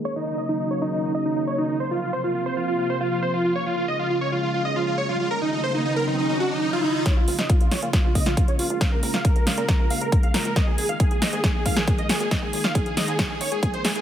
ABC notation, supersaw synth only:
X:1
M:4/4
L:1/16
Q:1/4=137
K:Bbm
V:1 name="Supersaw synth"
d E E e E E d E E E e E E d E E | c F F c F F c F F F c F F c F F | d F F e F F d F F F e F F d F F | B E E c E E B E E E G E E F E E |
d F F e F F d F F F e F F d F F | z B B f B B f B B B f B z f B B | e A A f A A e A A A f A A e A A | e A A f A A e A z A d A A c A A |]